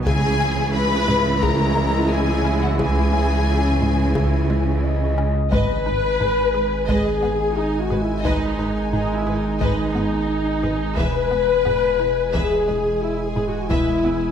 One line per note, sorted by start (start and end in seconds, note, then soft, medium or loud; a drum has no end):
0.05 5.52 C#2 medium
0.05 5.28 C#2 loud
0.05 0.27 C#3 loud
0.05 5.16 C#3 loud
0.05 5.28 C#3 medium
0.05 5.16 E3 medium
0.05 3.36 G#3 loud
0.05 5.28 G#3 medium
0.05 3.36 E4 loud
0.05 5.28 E4 medium
0.05 0.71 G#4 loud
0.05 0.71 G#5 loud
0.05 taiko loud
0.40 0.61 C#4 medium
0.74 1.43 B4 loud
0.74 1.42 B5 loud
1.08 1.29 G#3 medium
1.08 taiko low-mid medium
1.43 1.63 C#3 loud
1.43 2.11 A#4 medium
1.43 2.11 A#5 loud
1.43 taiko medium
1.77 1.98 G#3 medium
2.11 2.62 G#4 medium
2.11 2.62 G#5 loud
2.45 2.65 C#4 medium
2.63 2.80 F#4 medium
2.63 2.80 F#5 medium
2.79 3.00 C#3 loud
2.79 5.15 G#4 medium
2.79 5.14 G#5 loud
2.79 taiko loud
3.13 3.34 C#4 medium
3.47 4.11 C#4 medium
3.82 4.02 G#3 medium
3.82 taiko low-mid medium
4.15 4.36 C#3 loud
4.15 4.82 E4 medium
4.15 taiko medium
4.50 4.70 G#3 medium
4.84 5.52 D#5 medium
5.18 5.38 C#4 medium
5.52 5.61 G#1 medium
5.52 10.99 G#1 medium
5.52 5.61 G#2 medium
5.52 10.94 D#3 medium
5.52 5.72 G#3 loud
5.52 10.94 G#3 medium
5.52 6.84 B4 loud
5.52 5.84 B4 medium
5.52 6.85 B4 loud
5.52 5.84 D#5 medium
5.52 10.94 G#5 medium
5.52 taiko loud
5.86 5.94 G#1 medium
5.86 5.95 G#2 medium
5.86 6.07 D#4 medium
5.86 5.95 B4 medium
6.20 6.29 G#1 medium
6.20 6.29 G#2 medium
6.20 6.41 D#4 medium
6.20 6.30 G#4 medium
6.20 6.30 B4 medium
6.20 taiko low-mid medium
6.54 6.62 G#1 medium
6.54 6.63 G#2 medium
6.54 6.75 G#4 medium
6.54 6.63 B4 medium
6.88 6.97 G#1 medium
6.88 6.97 G#2 medium
6.88 7.09 G#3 medium
6.88 7.56 G#4 medium
6.88 7.20 B4 medium
6.88 7.20 D#5 medium
6.88 taiko medium
7.23 7.31 G#1 medium
7.23 7.31 G#2 medium
7.23 7.43 B3 medium
7.23 7.31 B4 medium
7.56 7.79 D#4 medium
7.56 7.80 D#4 medium
7.80 8.02 F#4 medium
7.80 8.03 F#4 medium
7.90 7.99 G#1 medium
7.90 7.99 G#2 medium
7.90 8.11 G#4 medium
7.90 7.98 B4 medium
7.90 taiko low-mid medium
8.02 8.25 E4 medium
8.24 8.32 G#1 medium
8.24 8.33 G#2 medium
8.24 8.45 G#3 medium
8.24 8.91 D#4 medium
8.24 8.92 D#4 medium
8.24 8.56 B4 medium
8.24 8.56 D#5 medium
8.24 taiko medium
8.59 8.67 G#1 medium
8.59 8.67 G#2 medium
8.59 8.80 D#4 medium
8.59 8.67 B4 soft
8.92 9.00 G#1 medium
8.92 9.02 G#2 medium
8.92 9.15 D#4 medium
8.92 9.14 D#4 medium
8.92 9.16 D#4 medium
8.92 9.01 G#4 medium
8.92 9.01 B4 medium
8.92 taiko low-mid medium
9.16 9.38 E4 medium
9.16 9.39 E4 medium
9.26 9.34 G#1 soft
9.26 9.36 G#2 medium
9.26 9.47 G#4 medium
9.26 9.35 B4 medium
9.39 9.60 D#4 medium
9.60 9.68 G#1 medium
9.60 9.70 G#2 medium
9.60 9.82 G#3 medium
9.60 10.80 D#4 medium
9.60 10.95 D#4 medium
9.60 9.93 B4 medium
9.60 9.93 D#5 medium
9.60 taiko medium
9.95 10.03 G#1 medium
9.95 10.04 G#2 medium
9.95 10.16 B3 medium
9.95 10.03 B4 medium
10.62 10.72 G#1 medium
10.62 10.72 G#2 medium
10.62 10.84 G#4 medium
10.62 10.71 B4 medium
10.62 taiko low-mid soft
10.96 11.06 E1 medium
10.96 14.31 E1 medium
10.96 11.06 E2 medium
10.96 11.18 E3 medium
10.96 14.31 E3 medium
10.96 14.31 G#3 medium
10.96 11.29 B4 medium
10.96 12.31 B4 loud
10.96 12.34 B4 medium
10.96 11.29 E5 medium
10.96 14.31 G#5 medium
10.96 taiko medium
11.31 11.40 E1 medium
11.31 11.40 E2 medium
11.31 11.52 B3 medium
11.31 11.39 B4 medium
11.64 11.74 E1 medium
11.64 11.74 E2 medium
11.64 11.86 B3 medium
11.64 11.72 G#4 medium
11.64 11.72 B4 medium
11.64 taiko low-mid medium
11.99 12.08 E1 soft
11.99 12.08 E2 medium
11.99 12.20 E4 medium
11.99 12.07 B4 medium
12.33 12.42 E1 medium
12.33 12.42 E2 medium
12.33 12.54 E3 medium
12.33 13.02 G#4 medium
12.33 13.01 G#4 medium
12.33 12.65 B4 medium
12.33 12.65 E5 medium
12.33 taiko medium
12.68 12.76 E1 medium
12.68 12.76 E2 medium
12.68 12.88 G#3 medium
12.68 12.76 B4 medium
13.02 13.25 E4 medium
13.25 13.47 G#4 medium
13.25 13.48 G#4 medium
13.36 13.44 E1 medium
13.36 13.45 E2 medium
13.36 13.57 E4 medium
13.36 13.44 B4 medium
13.36 taiko low-mid medium
13.48 13.70 F#4 medium
13.48 13.71 F#4 medium
13.69 13.78 E1 medium
13.69 13.78 E2 medium
13.69 13.91 E3 medium
13.69 14.31 E4 loud
13.69 14.31 E4 medium
13.69 14.02 B4 medium
13.69 14.02 E5 medium
13.69 taiko medium
14.04 14.12 E1 medium
14.04 14.13 E2 medium
14.04 14.25 B3 medium
14.04 14.13 B4 medium